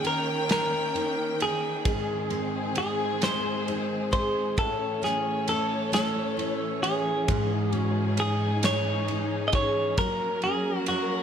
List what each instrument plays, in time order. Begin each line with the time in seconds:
Already playing: steel-string acoustic guitar D#3 C#4, string section D#3 A#3 C#4 G5
0.03 steel-string acoustic guitar A#4, clean electric guitar A#4, ride
0.49 clean electric guitar A#4, snare, ride
0.95 steel-string acoustic guitar D#4, ride
1.40 clean electric guitar G#4, steel-string acoustic guitar A#4, ride
1.85 steel-string acoustic guitar G#2 G#4, string section G#3 C4 G#4, kick, ride
2.30 steel-string acoustic guitar C4, ride
2.75 steel-string acoustic guitar G#4, clean electric guitar G#4, ride
3.22 steel-string acoustic guitar G#3, clean electric guitar C5, snare, ride
3.68 steel-string acoustic guitar D#4, ride
4.11 steel-string acoustic guitar G#4, clean electric guitar C5, kick, ride
4.57 steel-string acoustic guitar A2, string section E3 A3 C#4 C#5, clean electric guitar A4, kick, ride
5.02 steel-string acoustic guitar C#4, clean electric guitar G#4, snare, ride
5.48 steel-string acoustic guitar A4, clean electric guitar A4, ride
5.92 steel-string acoustic guitar A3, clean electric guitar A4, snare, ride
6.37 steel-string acoustic guitar E4, ride
6.83 clean electric guitar G#4, ride
7.28 string section G#2 D#4 G#4, steel-string acoustic guitar G#2 G#4, kick, ride
7.73 steel-string acoustic guitar C#4, ride
7.77 clean electric guitar F#4
8.17 steel-string acoustic guitar G#4, clean electric guitar G#4, ride
8.63 steel-string acoustic guitar G#3, clean electric guitar C#5, snare, ride
9.08 steel-string acoustic guitar D#4, ride
9.48 clean electric guitar D#5
9.53 steel-string acoustic guitar G#4, clean electric guitar C#5, kick, ride
9.97 string section F#3 A#3 A#4, steel-string acoustic guitar F#3 A#4, clean electric guitar A#4, kick, ride
10.42 steel-string acoustic guitar C#4, clean electric guitar G#4, ride
10.86 clean electric guitar F#4, steel-string acoustic guitar A#4, ride